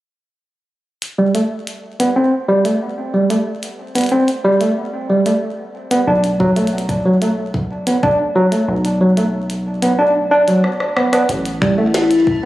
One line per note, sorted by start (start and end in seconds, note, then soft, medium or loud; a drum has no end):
1.02 closed hi-hat soft
1.18 1.28 G3 medium
1.35 1.40 A3 medium
1.35 closed hi-hat medium
1.67 closed hi-hat soft
2.00 2.09 B3 medium
2.00 closed hi-hat medium
2.16 2.30 C4 medium
2.49 2.58 G3 medium
2.65 2.75 A3 medium
2.65 closed hi-hat medium
3.14 3.23 G3 medium
3.30 3.36 A3 medium
3.30 closed hi-hat medium
3.63 closed hi-hat soft
3.95 4.05 B3 medium
3.95 closed hi-hat medium
3.98 closed hi-hat soft
4.01 closed hi-hat soft
4.04 closed hi-hat soft
4.06 closed hi-hat soft
4.09 4.26 C4 medium
4.09 closed hi-hat soft
4.28 closed hi-hat soft
4.44 4.54 G3 loud
4.61 4.70 A3 medium
4.61 closed hi-hat medium
5.10 5.19 G3 medium
5.26 5.32 A3 medium
5.26 closed hi-hat medium
5.91 6.01 B3 medium
5.91 closed hi-hat medium
6.07 8.65 B1 medium
6.07 6.22 D4 medium
6.24 closed hi-hat soft
6.40 6.50 F#3 medium
6.40 kick loud
6.56 6.66 A3 medium
6.56 closed hi-hat medium
6.67 closed hi-hat soft
6.78 closed hi-hat soft
6.89 kick loud
6.89 closed hi-hat soft
7.05 7.15 F#3 medium
7.22 7.27 A3 medium
7.22 closed hi-hat medium
7.54 kick loud
7.87 7.96 B3 medium
7.87 closed hi-hat medium
8.03 8.17 D4 medium
8.03 kick loud
8.36 8.45 F#3 medium
8.52 8.62 A3 medium
8.52 closed hi-hat medium
8.68 11.26 B1 medium
8.85 closed hi-hat soft
9.01 9.10 F#3 medium
9.17 9.23 A3 medium
9.17 closed hi-hat medium
9.50 closed hi-hat soft
9.82 9.92 B3 medium
9.82 closed hi-hat medium
9.99 10.13 D4 medium
10.31 10.41 D4 loud
10.48 10.62 F#3 medium
10.48 closed hi-hat medium
10.64 cross-stick medium
10.80 cross-stick medium
10.97 11.11 B3 medium
10.97 cross-stick medium
11.13 11.22 B3 medium
11.13 cross-stick medium
11.13 closed hi-hat medium
11.29 12.45 A1 medium
11.29 12.45 A3 medium
11.29 closed hi-hat medium
11.46 12.45 E4 medium
11.46 12.45 A4 medium
11.46 closed hi-hat medium
11.62 11.71 G3 medium
11.62 finger snap medium
11.62 kick loud
11.78 11.84 A3 medium
11.94 snare loud
11.94 closed hi-hat medium
12.11 closed hi-hat medium
12.27 kick loud